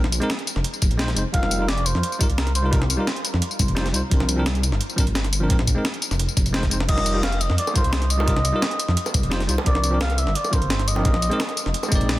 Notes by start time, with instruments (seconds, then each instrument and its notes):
Already playing: detuned saw bass A#1
0.04 snare
0.12 closed hi-hat, tambourine
0.20 tine electric piano G#3 C4 D#4 A#4, closed hi-hat
0.30 snare, closed hi-hat
0.39 closed hi-hat
0.47 closed hi-hat, tambourine
0.56 detuned saw bass F1, snare
0.64 closed hi-hat
0.74 tambourine
0.82 detuned saw bass F1, kick, closed hi-hat, tambourine
0.91 detuned saw bass A#1, closed hi-hat
0.98 tine electric piano G#3 C4 D#4 C5, snare, closed hi-hat
1.08 snare, closed hi-hat
1.15 detuned saw bass F1, tine electric piano G#3 C4 D#4 C5, closed hi-hat, tambourine
1.32 detuned saw bass F1, tine electric piano G3 D#4 F4 A#4, muted trumpet F5, kick, closed hi-hat
1.43 snare
1.51 closed hi-hat, tambourine
1.59 tine electric piano G3 D#4 F4 A#4
1.69 muted trumpet D5, snare, closed hi-hat
1.78 closed hi-hat
1.86 muted trumpet C5, closed hi-hat, tambourine
1.95 detuned saw bass F2, snare
2.03 closed hi-hat
2.12 tambourine
2.19 tine electric piano G3 D#4 F4 A#4, kick, closed hi-hat, tambourine
2.30 detuned saw bass C2, closed hi-hat
2.38 muted trumpet A#4, snare, closed hi-hat
2.47 snare, closed hi-hat
2.55 muted trumpet C5, closed hi-hat, tambourine
2.62 tine electric piano G3 D#4 F4 A#4
2.71 tine electric piano G3 D#4 F4 A#4, kick, closed hi-hat
2.82 snare
2.90 closed hi-hat, tambourine
2.97 tine electric piano G3 D#4 F4 A#4
3.07 snare, closed hi-hat
3.16 closed hi-hat
3.25 closed hi-hat, tambourine
3.34 detuned saw bass F2, snare
3.42 closed hi-hat
3.51 tambourine
3.59 detuned saw bass C2, kick, closed hi-hat, tambourine
3.68 detuned saw bass F1, closed hi-hat
3.75 tine electric piano G3 D#4 F4 C5, snare, closed hi-hat
3.86 snare, closed hi-hat
3.92 detuned saw bass C2, tine electric piano G3 D#4 F4 C5, closed hi-hat, tambourine
4.10 detuned saw bass C2, tine electric piano F3 C4 D4 A#4, kick, closed hi-hat
4.20 snare
4.29 closed hi-hat, tambourine
4.36 tine electric piano F3 C4 D4 A#4
4.46 snare, closed hi-hat
4.55 closed hi-hat
4.63 closed hi-hat, tambourine
4.72 detuned saw bass G1, snare
4.81 closed hi-hat
4.90 tambourine
4.96 tine electric piano F3 C4 D4 A#4, kick, closed hi-hat, tambourine
5.07 detuned saw bass G1, closed hi-hat
5.15 snare, closed hi-hat
5.24 snare, closed hi-hat
5.33 closed hi-hat, tambourine
5.40 tine electric piano F3 C4 D4 A#4
5.48 detuned saw bass A#1, tine electric piano G#3 C4 D#4 A#4, kick, closed hi-hat
5.59 snare
5.67 kick, closed hi-hat, tambourine
5.75 tine electric piano G#3 C4 D#4 A#4
5.85 snare, closed hi-hat
5.94 closed hi-hat
6.02 closed hi-hat, tambourine
6.11 detuned saw bass F1, snare, tambourine
6.19 detuned saw bass F1, closed hi-hat
6.29 tambourine
6.37 detuned saw bass F1, kick, closed hi-hat, tambourine
6.46 closed hi-hat, tambourine
6.53 tine electric piano G#3 C4 D#4 C5, snare, closed hi-hat
6.63 kick, snare, closed hi-hat
6.70 tine electric piano G#3 C4 D#4 C5, closed hi-hat, tambourine
6.80 snare
6.87 detuned saw bass F1, tine electric piano G3 D#4 F4 A#4, muted trumpet D#5, kick, closed hi-hat, crash
6.98 snare
7.06 closed hi-hat, tambourine
7.14 tine electric piano G3 D#4 F4 A#4
7.23 muted trumpet F5, snare, closed hi-hat, high bongo
7.32 closed hi-hat
7.41 muted trumpet D#5, closed hi-hat, tambourine
7.50 detuned saw bass F2, snare
7.58 muted trumpet D5, closed hi-hat
7.67 tambourine, high bongo
7.74 tine electric piano G3 D#4 F4 A#4, muted trumpet C5, kick, closed hi-hat, tambourine
7.84 detuned saw bass C2, closed hi-hat
7.93 snare, closed hi-hat
8.02 snare, closed hi-hat
8.10 muted trumpet D#5, closed hi-hat, tambourine
8.17 tine electric piano G3 D#4 F4 A#4, high bongo
8.26 tine electric piano G3 D#4 F4 A#4, kick, closed hi-hat
8.37 snare
8.45 closed hi-hat, tambourine
8.52 tine electric piano G3 D#4 F4 A#4
8.62 snare, closed hi-hat, high bongo
8.71 closed hi-hat
8.79 closed hi-hat, tambourine
8.88 detuned saw bass F2, snare
8.97 closed hi-hat
9.06 tambourine, high bongo
9.14 detuned saw bass C2, kick, closed hi-hat, tambourine
9.23 detuned saw bass F1, closed hi-hat
9.30 tine electric piano G3 D#4 F4 C5, snare, closed hi-hat
9.40 snare, closed hi-hat
9.47 detuned saw bass C2, tine electric piano G3 D#4 F4 C5, closed hi-hat, tambourine
9.58 high bongo
9.64 detuned saw bass C2, tine electric piano F3 C4 D4 A#4, muted trumpet D5, kick, closed hi-hat
9.75 snare
9.84 closed hi-hat, tambourine
9.91 tine electric piano F3 C4 D4 A#4
10.01 muted trumpet F5, snare, closed hi-hat, high bongo
10.10 closed hi-hat
10.18 muted trumpet E5, closed hi-hat, tambourine
10.27 detuned saw bass G1, snare
10.35 muted trumpet D5, closed hi-hat
10.44 tambourine, high bongo
10.51 tine electric piano F3 C4 D4 A#4, muted trumpet C5, kick, closed hi-hat, tambourine
10.62 detuned saw bass G1, closed hi-hat
10.70 snare, closed hi-hat
10.79 snare, closed hi-hat
10.88 muted trumpet D#5, closed hi-hat, tambourine
10.95 tine electric piano F3 C4 D4 A#4, high bongo
11.03 detuned saw bass A#1, tine electric piano G#3 C4 D#4 A#4, kick, closed hi-hat
11.14 snare
11.22 closed hi-hat, tambourine
11.30 tine electric piano G#3 C4 D#4 A#4, closed hi-hat
11.40 snare, closed hi-hat, high bongo
11.49 closed hi-hat
11.57 closed hi-hat, tambourine
11.66 detuned saw bass F1, snare
11.74 closed hi-hat
11.83 tambourine, high bongo
11.89 detuned saw bass F1, tine electric piano G#3 C4, kick, closed hi-hat, tambourine
11.93 tine electric piano D#4 D5
12.01 detuned saw bass A#1, closed hi-hat
12.09 snare, closed hi-hat